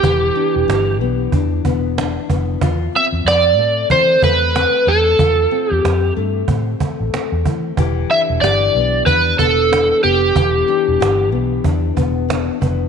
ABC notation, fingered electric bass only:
X:1
M:4/4
L:1/16
Q:"Swing 16ths" 1/4=93
K:Ephr
V:1 name="Fingered electric bass" clef=bass
E,,,2 z E,,, G,,,2 B,,,2 E,,2 E,,,4 F,,,2 | E,,2 z E,, F,,2 A,,2 E,2 E,,3 z E,,2 | E,,2 z E,, F,,2 G,,2 A,,2 z A,,, z E,, E,2 | E,,,2 z E,,, G,,,2 B,,,2 E,,2 E,,,4 F,,,2 |
E,,,2 z E,,, G,,,2 B,,,2 E,,2 E,,,4 F,,,2 |]